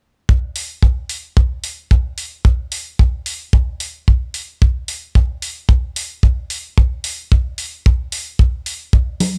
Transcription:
0.29 kick
0.56 open hi-hat
0.83 kick
1.09 open hi-hat
1.37 kick
1.64 open hi-hat
1.91 kick
2.18 open hi-hat
2.45 kick
2.72 open hi-hat
2.99 kick
3.26 open hi-hat
3.53 kick
3.80 open hi-hat
4.08 kick
4.34 open hi-hat
4.62 kick
4.88 open hi-hat
5.15 kick
5.42 open hi-hat
5.69 kick
5.96 open hi-hat
6.23 kick
6.50 open hi-hat
6.78 kick
7.04 open hi-hat
7.32 kick
7.58 open hi-hat
7.86 kick
8.12 open hi-hat
8.39 kick
8.66 open hi-hat
8.93 kick
9.20 open hi-hat, high conga

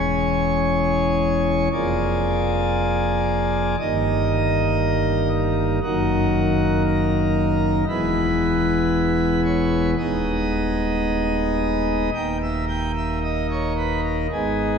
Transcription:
Already playing: E1 E2 G#3 C#4 G#4 C#5
1.72 F1 F2 F3 A#3 G#4 D5
3.80 G1 G2 D#3 A#3 D#4 D#5
5.83 F#1 F#2 D#3 A#3 D#4 F#4
6.86 A#4
7.88 E1 E2 G#3 B3 E4 B4
9.45 C#5
9.98 D#1 D#2 G#3 B3 D#4 D#5
12.15 D#1 D#2 A#3 D#4 G5
12.42 E5
12.69 G5
12.97 E5
13.24 D#5
13.51 C#5
13.78 B4
14.04 A#4
14.32 G#1 G#2 G#3 B3 D#4 G#4

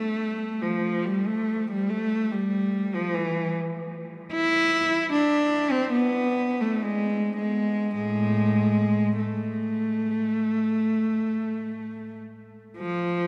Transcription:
Already playing: A3
0.62 F3
1.06 G3
1.27 A3
1.71 G3
1.90 A3
2.32 G3
2.95 F3
3.14 E3
4.33 E4
5.13 D4
5.72 C4
5.92 B3
6.61 A3
6.83 G#3
7.37 G#3
7.96 A2 G#3
9.20 A3
12.78 F3

